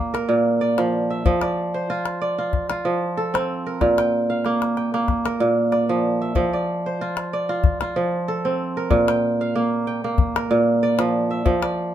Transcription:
0.00 0.27 A#2 medium
0.00 1.75 A#3 medium
0.14 1.41 A#4 medium
0.14 calabash click soft
0.29 1.30 A#2 medium
0.61 1.42 D5 medium
0.78 1.24 F3 medium
0.78 calabash click soft
1.10 1.96 E5 medium
1.25 2.84 F3 medium
1.25 calabash thump medium
1.42 2.21 D5 medium
1.42 calabash click soft
1.74 2.93 C5 medium
1.90 2.38 F4 medium
2.06 calabash click soft
2.21 3.32 D5 medium
2.38 2.70 F4 medium
2.53 calabash thump medium
2.70 4.22 F4 medium
2.70 calabash click soft
2.85 3.86 F3 medium
3.17 3.72 A4 medium
3.34 5.14 C4 medium
3.34 calabash click soft
3.66 4.94 A#4 medium
3.81 5.39 A#2 medium
3.81 calabash thump medium
3.81 calabash click soft
3.98 4.77 G5 medium
3.98 calabash click soft
4.30 5.30 F5 medium
4.45 4.94 A#3 medium
4.45 calabash click soft
4.62 calabash click soft
4.77 5.70 G5 medium
4.77 calabash click soft
4.94 6.87 A#3 medium
4.94 calabash click soft
5.08 calabash thump medium
5.08 calabash click soft
5.26 6.53 A#4 medium
5.26 calabash click soft
5.40 6.41 A#2 medium
5.72 6.53 D5 medium
5.72 calabash click soft
5.89 6.34 F3 medium
6.22 7.07 E5 medium
6.35 7.95 F3 medium
6.35 calabash thump medium
6.53 7.33 D5 medium
6.86 8.05 C5 medium
7.01 7.49 F4 medium
7.17 calabash click soft
7.33 8.44 D5 medium
7.49 7.81 F4 medium
7.64 calabash thump medium
7.81 9.33 F4 medium
7.81 calabash click soft
7.96 8.96 F3 medium
8.28 8.83 A4 medium
8.45 10.25 C4 medium
8.77 10.04 A#4 medium
8.90 10.49 A#2 medium
8.90 calabash thump medium
9.08 9.87 G5 medium
9.08 calabash click medium
9.41 10.41 F5 medium
9.55 10.04 A#3 medium
9.87 10.80 G5 medium
10.04 11.95 A#3 medium
10.18 calabash thump medium
10.36 11.63 A#4 medium
10.36 calabash click soft
10.51 11.51 A#2 medium
10.83 11.62 D5 medium
10.99 11.44 F3 medium
10.99 calabash click medium
11.31 11.95 E5 medium
11.45 11.95 F3 medium
11.45 calabash thump medium
11.62 11.95 D5 medium
11.62 calabash click soft

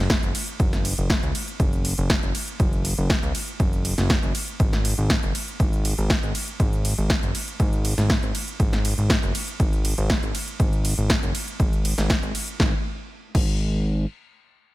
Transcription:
0.00 0.18 F#1 medium
0.10 kick loud
0.10 snare loud
0.10 closed hi-hat medium
0.23 0.33 F#1 medium
0.23 closed hi-hat soft
0.35 open hi-hat loud
0.35 ride medium
0.48 closed hi-hat medium
0.60 0.94 F#1 loud
0.60 kick loud
0.60 closed hi-hat medium
0.73 snare soft
0.73 closed hi-hat soft
0.85 open hi-hat loud
0.85 ride medium
0.98 1.18 F#1 medium
0.98 closed hi-hat medium
1.10 kick loud
1.10 snare loud
1.10 closed hi-hat medium
1.23 1.33 C#2 medium
1.23 closed hi-hat soft
1.35 open hi-hat loud
1.35 ride medium
1.48 closed hi-hat medium
1.60 1.94 F#1 loud
1.60 kick loud
1.60 closed hi-hat medium
1.73 closed hi-hat soft
1.85 open hi-hat loud
1.85 ride medium
1.98 2.18 F#1 loud
1.98 closed hi-hat medium
2.10 kick loud
2.10 snare loud
2.10 closed hi-hat medium
2.23 2.32 F#1 medium
2.23 closed hi-hat soft
2.35 open hi-hat loud
2.35 ride medium
2.48 closed hi-hat medium
2.60 2.94 F#1 loud
2.60 kick loud
2.60 closed hi-hat medium
2.73 closed hi-hat soft
2.85 open hi-hat loud
2.85 ride medium
2.98 3.18 F#1 medium
2.98 closed hi-hat soft
3.10 kick loud
3.10 snare loud
3.10 closed hi-hat soft
3.23 3.32 C#2 loud
3.23 closed hi-hat soft
3.35 open hi-hat loud
3.35 ride medium
3.48 closed hi-hat soft
3.60 3.94 F#1 loud
3.60 kick loud
3.60 closed hi-hat soft
3.73 closed hi-hat soft
3.85 open hi-hat loud
3.85 ride medium
3.98 4.18 F#1 medium
3.98 snare soft
3.98 closed hi-hat medium
4.10 kick loud
4.10 snare loud
4.10 closed hi-hat medium
4.23 4.33 F#1 medium
4.23 closed hi-hat soft
4.35 open hi-hat loud
4.35 ride medium
4.48 closed hi-hat medium
4.60 4.94 G#1 loud
4.60 kick loud
4.60 closed hi-hat medium
4.73 snare soft
4.73 closed hi-hat soft
4.85 open hi-hat loud
4.85 ride medium
4.98 5.18 G#1 medium
4.98 closed hi-hat soft
5.10 kick loud
5.10 snare loud
5.10 closed hi-hat medium
5.23 5.33 F#1 loud
5.23 closed hi-hat soft
5.35 open hi-hat loud
5.35 ride medium
5.48 closed hi-hat medium
5.60 5.94 G#1 loud
5.60 kick loud
5.60 closed hi-hat soft
5.73 closed hi-hat soft
5.85 open hi-hat loud
5.85 ride medium
5.98 6.18 G#1 medium
5.98 closed hi-hat medium
6.10 kick loud
6.10 snare loud
6.10 closed hi-hat soft
6.23 6.33 G#1 medium
6.23 closed hi-hat soft
6.35 open hi-hat loud
6.35 ride medium
6.48 closed hi-hat medium
6.60 6.94 G#1 loud
6.60 kick loud
6.60 closed hi-hat medium
6.73 closed hi-hat soft
6.85 open hi-hat loud
6.85 ride medium
6.98 7.18 G#1 medium
6.98 closed hi-hat medium
7.10 kick loud
7.10 snare loud
7.10 closed hi-hat medium
7.23 7.33 F#1 loud
7.23 closed hi-hat soft
7.35 open hi-hat loud
7.35 ride medium
7.48 closed hi-hat medium
7.60 7.94 G#1 loud
7.60 kick loud
7.60 closed hi-hat soft
7.73 closed hi-hat soft
7.85 open hi-hat loud
7.85 ride medium
7.98 8.18 G#1 medium
7.98 snare soft
7.98 closed hi-hat medium
8.10 kick loud
8.10 snare loud
8.10 closed hi-hat medium
8.23 8.32 G#1 loud
8.23 closed hi-hat soft
8.35 open hi-hat loud
8.35 ride medium
8.48 closed hi-hat medium
8.60 8.94 G#1 loud
8.60 kick loud
8.60 closed hi-hat medium
8.73 snare soft
8.73 closed hi-hat soft
8.85 open hi-hat loud
8.85 ride medium
8.98 9.18 G#1 medium
8.98 closed hi-hat medium
9.10 kick loud
9.10 snare loud
9.10 closed hi-hat medium
9.23 9.33 F#1 loud
9.23 closed hi-hat soft
9.35 open hi-hat loud
9.35 ride medium
9.48 closed hi-hat medium
9.60 9.94 G#1 loud
9.60 kick loud
9.60 closed hi-hat medium
9.73 closed hi-hat soft
9.85 open hi-hat loud
9.85 ride medium
9.98 10.18 G#1 medium
9.98 closed hi-hat medium
10.10 kick loud
10.10 snare loud
10.10 closed hi-hat medium
10.23 10.32 G#1 medium
10.23 closed hi-hat soft
10.35 open hi-hat loud
10.35 ride medium
10.48 closed hi-hat medium
10.60 10.94 G#1 loud
10.60 kick loud
10.60 closed hi-hat medium
10.73 closed hi-hat soft
10.85 open hi-hat loud
10.85 ride medium
10.98 11.18 G#1 medium
10.98 closed hi-hat medium
11.10 kick loud
11.10 snare loud
11.10 closed hi-hat medium
11.23 11.32 F#1 loud
11.23 closed hi-hat soft
11.35 open hi-hat loud
11.35 ride medium
11.48 closed hi-hat medium
11.60 11.94 G#1 loud
11.60 kick loud
11.60 closed hi-hat medium
11.73 closed hi-hat soft
11.85 open hi-hat loud
11.85 ride medium
11.98 12.18 G#1 medium
11.98 snare soft
11.98 closed hi-hat medium
12.10 kick loud
12.10 snare loud
12.10 closed hi-hat medium
12.23 12.32 G#1 medium
12.23 closed hi-hat soft
12.35 open hi-hat loud
12.35 ride medium
12.48 closed hi-hat medium
12.60 12.74 G#1 loud
12.60 kick loud
12.60 snare medium
13.35 14.06 G#1 loud
13.35 kick loud
13.35 crash medium

